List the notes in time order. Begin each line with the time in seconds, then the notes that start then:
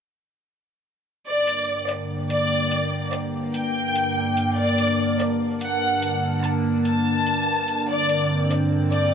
1.27 G2 D3 A#3 D4 D5
1.36 A#4 G5
1.47 closed hi-hat
1.89 D5, closed hi-hat
2.30 D5, closed hi-hat
2.71 closed hi-hat
3.13 D5, closed hi-hat
3.54 G5, closed hi-hat
3.96 closed hi-hat
4.37 closed hi-hat
4.58 D5
4.70 A5
4.78 closed hi-hat
5.20 D5, closed hi-hat
5.61 F#5, closed hi-hat
6.02 closed hi-hat
6.44 A5, closed hi-hat
6.85 A5, closed hi-hat
7.27 closed hi-hat
7.68 closed hi-hat
7.89 C4 D5
8.01 G5
8.09 closed hi-hat
8.51 D5, closed hi-hat
8.92 D5, closed hi-hat